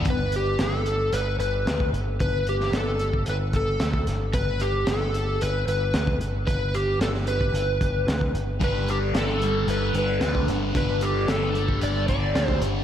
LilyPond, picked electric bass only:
\new Staff \with { instrumentName = "Picked electric bass" } { \clef bass \time 4/4 \key g \major \tempo 4 = 112 g,,4 g,,4 g,,8 g,,8 d,8 g,,8 | g,,4 g,,4 g,,8 g,,8 d,8 g,,8 | g,,4 g,,4 g,,8 g,,8 d,8 g,,8 | g,,4 g,,4 g,,8 g,,8 d,8 g,,8 |
g,,4 g,,4 g,,8 g,,8 d,8 g,,8 | g,,4 g,,4 g,,8 g,,8 d,8 g,,8 | }